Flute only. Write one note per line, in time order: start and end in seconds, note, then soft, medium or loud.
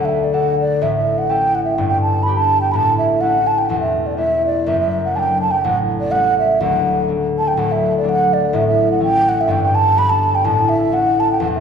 0.01 0.06 F#5 medium
0.05 0.25 E5 medium
0.24 0.35 D5 medium
0.34 0.59 F#5 loud
0.60 0.84 D5 loud
0.83 0.94 E5 medium
0.96 1.20 E5 medium
1.18 1.31 F#5 medium
1.30 1.56 G5 loud
1.55 1.64 F#5 loud
1.64 1.77 E5 medium
1.76 1.88 G5 medium
1.89 2.01 G5 medium
2.02 2.25 A5 loud
2.23 2.39 B5 loud
2.37 2.61 A5 loud
2.61 2.73 G5 medium
2.72 2.77 B5 loud
2.76 2.97 A5 loud
2.98 3.22 E5 medium
3.21 3.49 F#5 loud
3.47 3.60 A5 loud
3.58 3.66 G5 medium
3.66 3.80 F#5 loud
3.66 3.70 G5 medium
3.81 4.08 E5 medium
4.06 4.18 D5 medium
4.18 4.42 E5 loud
4.46 4.69 D5 medium
4.68 4.79 E5 loud
4.80 5.02 E5 medium
5.05 5.17 F#5 medium
5.16 5.41 G5 loud
5.16 5.20 A5 medium
5.42 5.53 A5 loud
5.51 5.66 G5 medium
5.64 5.77 F#5 loud
6.00 6.13 D5 loud
6.11 6.37 F#5 loud
6.39 6.62 E5 loud
6.61 7.08 F#5 loud
7.38 7.49 A5 loud
7.48 7.60 G5 medium
7.59 7.73 F#5 medium
7.72 7.94 E5 medium
7.97 8.10 D5 medium
8.09 8.35 F#5 loud
8.33 8.56 D5 loud
8.55 8.67 E5 medium
8.68 8.89 E5 medium
8.91 9.01 F#5 medium
9.03 9.30 G5 loud
9.29 9.42 F#5 loud
9.41 9.52 E5 medium
9.51 9.63 G5 loud
9.63 9.76 G5 loud
9.75 10.00 A5 loud
9.98 10.11 B5 loud
10.09 10.36 A5 loud
10.35 10.47 G5 loud
10.45 10.70 A5 loud
10.69 10.95 E5 loud
10.93 11.21 F#5 loud
11.20 11.30 A5 loud
11.32 11.41 G5 medium
11.42 11.48 F#5 loud
11.55 11.60 E5 medium